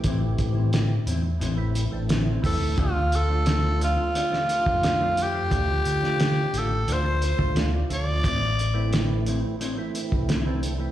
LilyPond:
<<
  \new Staff \with { instrumentName = "Tenor saxophone" } { \time 4/4 \key a \minor \tempo 4 = 88 r2. r8 a'8 | f'8 a'4 f'2 g'8~ | g'4. a'8 c''4 r8 d''8~ | d''4. r2 r8 | }
  \new Staff \with { instrumentName = "Clean electric guitar" } { \time 4/4 \key a \minor <a, e c' e'>16 r8 <e c' e'>16 r8 <a, e c' e'>16 r16 <a, e c' e'>16 r8. <a, e c' e'>16 <e c' e'>16 r8 | <d a d' f'>16 r8 <a d' f'>16 r8 <d a d' f'>16 r16 <d a d' f'>16 r8. <d a d' f'>16 <a d' f'>16 r8 | <d a d' f'>16 r8 <a d' f'>16 r8 <d a d' f'>16 r16 <d a d' f'>16 r8. <d a d' f'>16 <a d' f'>16 r8 | <a, a c' e'>16 r8 <a c' e'>16 r8 <a, a c' e'>16 r16 <a, a c' e'>16 r8. <a, a c' e'>16 <a c' e'>16 r8 | }
  \new Staff \with { instrumentName = "Tonewheel organ" } { \time 4/4 \key a \minor <e a c' g'>4~ <e a c' g'>16 r4 <e a c' e'>8 <e a c' d'>8 r16 <e a c' e'>8 | r8. <f a d' f'>4~ <f a d' f'>16 r16 <f a d' g'>8. r16 <f a d' f'>8 <f a d' f'>16~ | <f a d' f'>4~ <f a d' f'>16 r4 <f a d' f'>8 <f a d' f'>8 r16 <f a d' f'>8 | r8. <e a c' e'>4~ <e a c' e'>16 r16 <e a c' e'>8. r16 <e a c' d'>8 <e a c' e'>16 | }
  \new Staff \with { instrumentName = "Fingered electric bass" } { \clef bass \time 4/4 \key a \minor a,,8 a,4 e,8 a,,8. a,,8. e,16 d,16 | d,2 r8. f,4~ f,16 | d,8 d4 a,,8 d,8. d,8. d,8 | a,,2 r8. c,4~ c,16 | }
  \new DrumStaff \with { instrumentName = "Drums" } \drummode { \time 4/4 <hh bd>8 <hh bd>8 <hh sn>8 hh8 hh8 hh8 <hh sn>8 <hho bd>8 | <hh bd>8 hh8 <hh sn>8 hh8 hh16 sn16 hh16 bd16 <hh sn>8 hh8 | <hh bd>8 hh16 sn16 <hh sn>8 hh8 hh8 hh16 bd16 <hh sn>8 hh8 | <hh bd>8 hh8 <hh sn>8 hh8 hh8 hh16 bd16 <hh sn>8 hh8 | }
>>